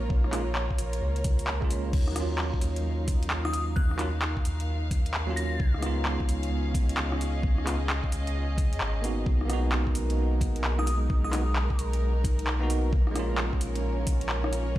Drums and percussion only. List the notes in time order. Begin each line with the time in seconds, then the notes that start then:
0.10 kick
0.24 cross-stick
0.33 cross-stick, clap, open hi-hat
0.55 clap
0.70 kick
0.78 open hi-hat
0.93 closed hi-hat
1.16 closed hi-hat
1.24 kick, open hi-hat
1.39 open hi-hat
1.47 clap
1.62 kick
1.71 open hi-hat
1.93 kick, crash
2.08 cross-stick
2.16 cross-stick, open hi-hat
2.38 clap
2.54 kick
2.61 open hi-hat
2.76 closed hi-hat
3.08 kick, open hi-hat
3.23 closed hi-hat
3.30 clap
3.45 cross-stick
3.54 open hi-hat
3.76 kick
3.91 cross-stick
3.99 cross-stick, clap, open hi-hat
4.22 clap
4.37 kick
4.45 open hi-hat
4.60 closed hi-hat
4.91 kick, open hi-hat
5.06 closed hi-hat
5.14 clap
5.37 open hi-hat
5.60 kick
5.74 cross-stick
5.83 cross-stick, open hi-hat
6.05 clap
6.20 kick
6.29 open hi-hat
6.43 closed hi-hat
6.74 kick, open hi-hat
6.89 closed hi-hat
6.97 clap
7.12 cross-stick
7.21 open hi-hat
7.43 kick
7.58 cross-stick
7.67 cross-stick, clap, open hi-hat
7.90 clap
8.04 kick
8.12 open hi-hat
8.27 closed hi-hat
8.58 kick, open hi-hat
8.73 closed hi-hat
8.81 clap
9.04 open hi-hat
9.26 kick
9.41 cross-stick
9.50 cross-stick, open hi-hat
9.72 clap
9.87 kick
9.95 open hi-hat
10.10 closed hi-hat
10.41 kick, open hi-hat
10.56 closed hi-hat
10.64 clap
10.79 cross-stick
10.87 open hi-hat
11.10 kick
11.24 cross-stick
11.33 cross-stick, clap, open hi-hat
11.56 clap
11.70 kick
11.79 open hi-hat
11.93 closed hi-hat
12.24 kick, open hi-hat
12.39 closed hi-hat
12.47 clap
12.70 open hi-hat
12.93 kick
13.07 cross-stick
13.16 cross-stick, open hi-hat
13.38 clap
13.53 kick
13.61 open hi-hat
13.76 closed hi-hat
14.07 kick, open hi-hat
14.21 closed hi-hat
14.29 clap
14.44 cross-stick
14.53 open hi-hat